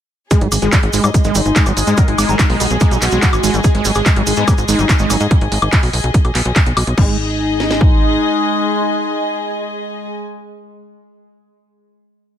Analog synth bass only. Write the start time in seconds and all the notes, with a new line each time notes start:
0.41 G#1
0.52 G#1
0.62 G#1
0.83 G#1
0.93 G#1
1.04 G#2
1.25 G#1
1.35 G#1
1.46 G#1
1.66 G#1
1.77 G#1
1.87 G#2
2.08 G#1
2.18 G#1
2.29 G#1
2.50 B1
2.60 B1
2.71 B1
2.91 B1
3.02 B1
3.12 B1
3.33 G#1
3.43 G#1
3.54 G#1
3.75 G#1
3.85 G#1
3.95 G#1
4.16 G#1
4.27 G#1
4.37 G#2
4.58 G#1
4.68 G#1
4.79 G#1
5.00 G#1
5.10 G#1
5.21 G#2
5.41 G#1
5.52 G#1
5.62 G#1
5.83 B1
5.93 B1
6.04 B1
6.25 B1
6.35 B1
6.46 B1
6.66 B1
6.77 B1
6.87 B1
6.98 G#1